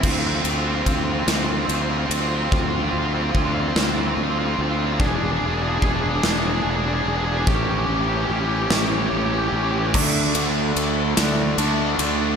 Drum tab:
CC |x-----|------|------|------|
RD |-xxxxx|------|------|------|
SD |---o--|---o--|---o--|---o--|
BD |o-o---|o-o---|o-o---|o-----|

CC |x-----|
RD |-xxxxx|
SD |---o--|
BD |o-----|